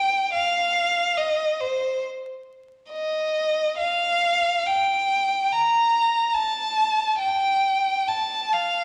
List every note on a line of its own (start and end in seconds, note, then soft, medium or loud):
0.00 0.34 G5 medium
0.33 1.16 F5 medium
1.17 1.61 D#5 medium
1.60 2.03 C5 medium
2.90 3.73 D#5 medium
3.77 4.67 F5 medium
4.66 5.52 G5 medium
5.52 6.34 A#5 medium
6.33 7.19 A5 medium
7.19 8.06 G5 medium
8.07 8.53 A5 medium
8.53 8.84 F5 medium